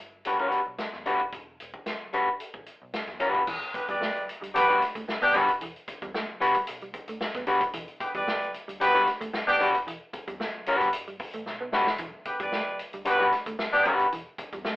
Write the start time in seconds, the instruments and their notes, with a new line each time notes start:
0.00 picked electric bass G1
0.25 clean electric guitar G3 D4 F#4 B4, closed hi-hat
0.39 picked electric bass A1, clean electric guitar G3 D4 F#4 B4, kick
0.52 closed hi-hat
0.67 picked electric bass B1
0.78 snare, closed hi-hat
0.93 picked electric bass E2, snare
1.06 clean electric guitar G3 D4 F#4 B4, closed hi-hat
1.20 picked electric bass D#1, kick
1.32 picked electric bass E1, kick, closed hi-hat
1.60 picked electric bass E1, closed hi-hat
1.74 kick
1.86 snare, closed hi-hat
2.13 picked electric bass G1, clean electric guitar G3 D4 F#4 B4, closed hi-hat
2.40 closed hi-hat
2.54 picked electric bass A1, kick
2.66 closed hi-hat
2.82 picked electric bass B1
2.94 snare, closed hi-hat
3.07 picked electric bass E2, kick, snare
3.20 clean electric guitar G3 D4 F#4 B4, kick, closed hi-hat
3.35 picked electric bass D#1, kick
3.47 picked electric bass E1, clean electric guitar E3, kick, crash
3.62 closed hi-hat
3.74 horn section B3 G4 B4, muted picked electric bass stroke, muted clean electric guitar stroke, kick, closed hi-hat
3.89 picked electric bass E2, clean electric guitar G3, horn section G4 B4 D5, kick, closed hi-hat
4.01 clean electric guitar A3, snare
4.15 muted clean electric guitar stroke, closed hi-hat
4.28 muted picked electric bass stroke, closed hi-hat
4.41 picked electric bass D2, clean electric guitar G3, closed hi-hat
4.54 picked electric bass B1, clean electric guitar G3 D4 F#4 B4, horn section B3 G4 B4, closed hi-hat
4.69 clean electric guitar G3 D4 F#4 B4, closed hi-hat
4.81 muted clean electric guitar stroke, snare, closed hi-hat
4.95 picked electric bass D2, clean electric guitar A3, kick, closed hi-hat
5.08 muted clean electric guitar stroke, snare
5.22 picked electric bass E2, horn section B3 D4 G4, clean electric guitar B3, snare, closed hi-hat
5.34 clean electric guitar G3 D4 F#4 B4, kick, closed hi-hat
5.49 picked electric bass D#1, closed hi-hat
5.61 picked electric bass E1, clean electric guitar E3, closed hi-hat
5.76 closed hi-hat
5.88 muted picked electric bass stroke, muted clean electric guitar stroke, kick, closed hi-hat
6.02 picked electric bass E2, clean electric guitar G3, kick, closed hi-hat
6.14 clean electric guitar A3, snare
6.29 muted clean electric guitar stroke
6.41 clean electric guitar G3 D4 F#4 B4, muted picked electric bass stroke, closed hi-hat
6.55 picked electric bass D2, clean electric guitar G3, kick, closed hi-hat
6.67 picked electric bass B1, closed hi-hat
6.81 clean electric guitar G3, closed hi-hat
6.94 muted clean electric guitar stroke, kick, closed hi-hat
7.08 picked electric bass D2, clean electric guitar A3, closed hi-hat
7.21 muted clean electric guitar stroke, snare
7.34 picked electric bass E2, clean electric guitar B3, kick, snare, closed hi-hat
7.47 clean electric guitar G3 D4 F#4 B4, closed hi-hat
7.60 picked electric bass D#1, kick, closed hi-hat
7.73 picked electric bass E1, clean electric guitar E3, kick, closed hi-hat
7.88 closed hi-hat
8.00 horn section B3 G4 B4, muted picked electric bass stroke, muted clean electric guitar stroke, kick, closed hi-hat
8.15 picked electric bass E2, clean electric guitar G3, horn section G4 B4 D5, kick, closed hi-hat
8.27 clean electric guitar A3, snare
8.42 muted clean electric guitar stroke, closed hi-hat
8.54 muted picked electric bass stroke, closed hi-hat
8.68 picked electric bass D2, clean electric guitar G3, closed hi-hat
8.80 picked electric bass B1, clean electric guitar G3 D4 F#4 B4, horn section B3 G4 B4, closed hi-hat
8.94 clean electric guitar G3 D4 F#4 B4
9.07 muted clean electric guitar stroke, snare, closed hi-hat
9.21 picked electric bass D2, clean electric guitar A3, kick, closed hi-hat
9.33 muted clean electric guitar stroke, snare
9.46 picked electric bass E2, horn section B3 D4 G4, clean electric guitar B3, snare, closed hi-hat
9.60 clean electric guitar G3 D4 F#4 B4, kick, closed hi-hat
9.74 picked electric bass D#1, closed hi-hat
9.87 picked electric bass E1, clean electric guitar E3, closed hi-hat
10.13 muted picked electric bass stroke, muted clean electric guitar stroke, kick, closed hi-hat
10.28 picked electric bass E2, clean electric guitar G3, kick, closed hi-hat
10.40 clean electric guitar A3, snare
10.54 muted clean electric guitar stroke
10.66 clean electric guitar G3 D4 F#4 B4, muted picked electric bass stroke, closed hi-hat
10.80 picked electric bass B1, clean electric guitar G3, kick, closed hi-hat
10.93 picked electric bass G1, closed hi-hat
11.07 clean electric guitar G3, closed hi-hat
11.19 muted clean electric guitar stroke, kick, open hi-hat
11.33 picked electric bass A1, clean electric guitar A3, closed hi-hat
11.46 picked electric bass B1, muted clean electric guitar stroke, snare
11.60 picked electric bass B1, clean electric guitar B3
11.72 clean electric guitar G3 D4 F#4 B4, snare
11.86 picked electric bass A1, snare
11.98 picked electric bass E1, clean electric guitar E3, kick, closed hi-hat
12.25 horn section B3 G4 B4, muted picked electric bass stroke, muted clean electric guitar stroke, kick, closed hi-hat
12.40 picked electric bass E2, clean electric guitar G3, horn section G4 B4 D5, kick, closed hi-hat
12.52 clean electric guitar A3, snare
12.67 muted clean electric guitar stroke
12.79 muted picked electric bass stroke, closed hi-hat
12.93 picked electric bass D2, clean electric guitar G3, closed hi-hat
13.05 picked electric bass B1, clean electric guitar G3 D4 F#4 B4, horn section B3 G4 B4, closed hi-hat
13.19 clean electric guitar G3 D4 F#4 B4
13.32 muted clean electric guitar stroke, snare, closed hi-hat
13.46 picked electric bass D2, clean electric guitar A3, kick, closed hi-hat
13.59 muted clean electric guitar stroke, snare
13.72 picked electric bass E2, horn section B3 D4 G4, clean electric guitar B3, snare, closed hi-hat
13.85 clean electric guitar G3 D4 F#4 B4, kick, closed hi-hat
13.99 picked electric bass D#1, closed hi-hat
14.12 picked electric bass E1, clean electric guitar E3, closed hi-hat
14.38 muted picked electric bass stroke, muted clean electric guitar stroke, kick, closed hi-hat
14.53 picked electric bass E2, clean electric guitar G3, kick, closed hi-hat
14.65 clean electric guitar A3, snare